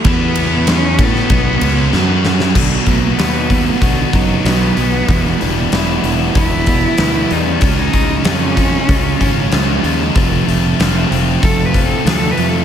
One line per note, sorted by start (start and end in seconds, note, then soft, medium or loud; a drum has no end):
0.05 0.95 E2 medium
0.05 0.98 E3 medium
0.05 0.98 B3 loud
0.05 0.98 E4 loud
0.05 kick loud
0.05 ride loud
0.09 0.66 B3 loud
0.35 ride medium
0.67 snare loud
0.67 ride loud
0.73 1.06 C#4 loud
0.99 1.28 A2 loud
0.99 1.29 A3 medium
0.99 1.29 E4 medium
0.99 1.30 A4 medium
0.99 kick loud
0.99 ride medium
1.05 2.28 B3 loud
1.15 snare soft
1.29 1.60 B1 medium
1.29 1.60 B2 medium
1.29 1.61 F#3 loud
1.29 1.61 B3 loud
1.29 kick loud
1.29 ride loud
1.61 1.91 C#2 medium
1.61 1.91 C#3 medium
1.61 1.92 G#3 medium
1.61 1.92 C#4 loud
1.61 ride medium
1.92 2.52 F#2 medium
1.92 2.54 F#3 medium
1.92 2.55 C#4 medium
1.92 2.55 F#4 loud
1.92 snare medium
2.25 snare medium
2.40 snare loud
2.55 2.80 B1 medium
2.55 2.86 B2 medium
2.55 2.73 D3 medium
2.55 2.86 D#3 medium
2.55 2.86 F#3 medium
2.55 2.88 B3 loud
2.55 2.87 D#4 medium
2.55 kick loud
2.55 crash loud
2.72 2.87 F#3 medium
2.86 3.12 B1 medium
2.86 3.17 B2 medium
2.86 3.17 D#3 medium
2.86 3.17 F#3 medium
2.86 3.03 A3 medium
2.86 3.19 B3 medium
2.86 3.18 D#4 medium
2.86 kick medium
2.86 open hi-hat medium
3.04 3.68 B3 medium
3.18 3.68 D#2 medium
3.18 3.49 B2 medium
3.18 3.49 D#3 medium
3.18 3.50 F#3 medium
3.18 3.51 B3 medium
3.18 3.50 D#4 medium
3.18 3.82 F#4 medium
3.18 snare loud
3.18 open hi-hat medium
3.50 3.81 B2 medium
3.50 3.81 D#3 medium
3.50 3.82 F#3 medium
3.50 3.82 B3 medium
3.50 3.82 D#4 medium
3.50 kick medium
3.50 open hi-hat medium
3.67 3.82 A3 medium
3.81 4.07 B1 medium
3.81 4.13 B2 medium
3.81 4.13 D3 medium
3.81 4.13 D#3 medium
3.81 4.13 F#3 medium
3.81 4.14 B3 loud
3.81 4.13 D#4 loud
3.81 5.09 F#4 medium
3.81 kick loud
3.81 open hi-hat medium
4.13 4.38 F#1 medium
4.13 4.44 B2 medium
4.13 4.44 D#3 medium
4.13 4.45 F#3 medium
4.13 4.48 F#3 medium
4.13 4.45 B3 medium
4.13 4.45 D#4 medium
4.13 kick medium
4.13 open hi-hat medium
4.44 4.70 B1 medium
4.44 4.76 B2 medium
4.44 4.76 D#3 medium
4.44 4.76 F#3 medium
4.44 4.77 B3 medium
4.44 5.69 B3 loud
4.44 4.77 D#4 medium
4.44 snare loud
4.44 open hi-hat medium
4.77 5.02 B1 medium
4.77 5.07 B2 medium
4.77 5.07 D#3 medium
4.77 5.07 F#3 medium
4.77 5.08 B3 medium
4.77 5.08 D#4 medium
4.77 open hi-hat medium
5.08 5.34 E1 medium
5.08 5.38 E2 medium
5.08 6.67 E2 medium
5.08 5.38 B2 loud
5.08 5.40 E3 medium
5.08 5.40 G3 medium
5.08 5.41 B3 loud
5.08 5.41 E4 loud
5.08 kick loud
5.08 open hi-hat medium
5.39 5.65 E1 medium
5.39 5.70 E2 medium
5.39 5.71 B2 medium
5.39 5.71 E3 medium
5.39 5.71 G3 medium
5.39 5.72 B3 medium
5.39 5.72 E4 loud
5.39 open hi-hat medium
5.72 5.97 E1 medium
5.72 6.02 E2 medium
5.72 6.03 B2 medium
5.72 6.02 E3 medium
5.72 6.02 G3 medium
5.72 6.03 B3 medium
5.72 6.03 E4 medium
5.72 snare loud
5.72 open hi-hat medium
6.03 6.28 E1 medium
6.03 6.33 E2 medium
6.03 6.34 B2 medium
6.03 6.33 E3 medium
6.03 6.34 G3 medium
6.03 6.34 B3 medium
6.03 6.34 E4 medium
6.03 open hi-hat medium
6.34 6.85 E1 medium
6.34 6.67 E2 medium
6.34 6.67 B2 loud
6.34 6.65 E3 loud
6.34 6.65 G3 medium
6.34 6.66 B3 loud
6.34 6.66 E4 medium
6.34 7.34 E4 loud
6.34 kick loud
6.34 open hi-hat medium
6.66 6.97 E2 medium
6.66 6.97 B2 medium
6.66 6.97 E3 medium
6.66 6.97 G3 medium
6.66 6.97 B3 medium
6.66 6.98 E4 medium
6.66 kick medium
6.66 open hi-hat medium
6.98 7.24 D2 medium
6.98 7.30 E2 medium
6.98 7.30 B2 medium
6.98 7.29 E3 medium
6.98 7.30 G3 medium
6.98 7.30 B3 medium
6.98 7.30 E4 loud
6.98 snare loud
6.98 open hi-hat medium
7.30 7.56 E2 medium
7.30 7.61 E2 medium
7.30 7.61 B2 medium
7.30 7.60 E3 medium
7.30 7.61 G3 medium
7.30 7.61 B3 medium
7.30 7.48 D#4 medium
7.30 7.61 E4 loud
7.30 open hi-hat medium
7.46 7.76 C#4 medium
7.61 7.87 C#2 medium
7.61 7.92 C#3 medium
7.61 7.92 G#3 medium
7.61 7.93 C#4 loud
7.61 7.94 F4 medium
7.61 kick loud
7.61 open hi-hat medium
7.77 8.24 D#4 loud
7.93 8.19 C#2 medium
7.93 8.24 C#3 medium
7.93 8.24 G#3 medium
7.93 8.25 C#4 medium
7.93 8.25 F4 loud
7.93 kick medium
7.93 open hi-hat medium
8.25 8.75 F2 medium
8.25 8.56 C#3 medium
8.25 8.56 G#3 medium
8.25 10.12 C#4 loud
8.25 8.57 C#4 medium
8.25 8.58 F4 medium
8.25 snare loud
8.25 open hi-hat medium
8.57 8.87 C#3 medium
8.57 8.88 G#3 medium
8.57 8.88 C#4 medium
8.57 8.88 F4 medium
8.57 kick medium
8.57 open hi-hat medium
8.89 9.14 C#2 medium
8.89 9.19 C#3 medium
8.89 9.19 G#3 loud
8.89 9.20 C#4 loud
8.89 9.20 F4 loud
8.89 kick loud
8.89 open hi-hat medium
9.20 9.46 G#1 medium
9.20 9.51 C#3 medium
9.20 9.51 G#3 medium
9.20 9.52 C#4 medium
9.20 9.52 F4 medium
9.20 kick medium
9.20 open hi-hat medium
9.52 9.77 C#2 medium
9.52 9.82 C#3 medium
9.52 10.16 F3 medium
9.52 9.83 G#3 medium
9.52 9.83 C#4 medium
9.52 9.83 F4 medium
9.52 snare loud
9.52 open hi-hat medium
9.83 10.09 D#2 medium
9.83 10.14 C#3 medium
9.83 10.14 G#3 medium
9.83 10.14 C#4 medium
9.83 10.14 F4 medium
9.83 open hi-hat soft
10.14 10.41 F1 loud
10.14 10.46 F2 medium
10.14 11.74 F2 medium
10.14 10.46 C3 loud
10.14 10.46 F3 medium
10.14 10.47 A3 medium
10.14 10.47 C4 medium
10.14 10.47 F4 loud
10.14 kick loud
10.14 open hi-hat medium
10.47 10.73 F1 medium
10.47 10.78 F2 medium
10.47 10.78 C3 medium
10.47 10.78 F3 medium
10.47 10.78 A3 medium
10.47 10.78 C4 medium
10.47 10.79 F4 medium
10.47 open hi-hat medium
10.79 11.04 F1 medium
10.79 11.09 F2 medium
10.79 11.10 C3 medium
10.79 11.10 F3 medium
10.79 11.10 A3 medium
10.79 11.10 C4 medium
10.79 11.11 F4 loud
10.79 snare loud
10.79 open hi-hat medium
11.10 11.36 F1 medium
11.10 11.41 F2 medium
11.10 11.41 C3 medium
11.10 11.41 F3 medium
11.10 11.41 A3 medium
11.10 11.41 C4 medium
11.10 11.41 F4 medium
11.10 open hi-hat medium
11.42 11.92 F1 medium
11.42 11.71 F2 loud
11.42 11.72 C3 medium
11.42 11.72 F3 medium
11.42 11.73 A3 medium
11.42 11.73 C4 loud
11.42 11.74 F4 loud
11.42 11.67 A4 loud
11.42 kick loud
11.42 open hi-hat medium
11.66 11.85 B4 medium
11.73 12.04 F2 medium
11.73 12.04 C3 medium
11.73 12.04 F3 medium
11.73 12.04 A3 medium
11.73 12.05 C4 medium
11.73 12.05 F4 medium
11.73 kick medium
11.73 open hi-hat medium
11.86 12.06 A4 medium
12.05 12.30 D2 medium
12.05 12.35 F2 medium
12.05 12.35 C3 medium
12.05 12.35 F3 medium
12.05 12.36 A3 medium
12.05 12.36 C4 medium
12.05 12.36 F4 medium
12.05 12.33 A4 loud
12.05 snare loud
12.05 open hi-hat medium
12.32 12.50 B4 medium
12.36 12.65 F2 medium
12.36 12.62 F2 medium
12.36 12.65 C3 medium
12.36 12.65 F3 medium
12.36 12.65 A3 medium
12.36 12.65 C4 medium
12.36 12.65 F4 medium
12.36 open hi-hat medium
12.49 12.65 A4 medium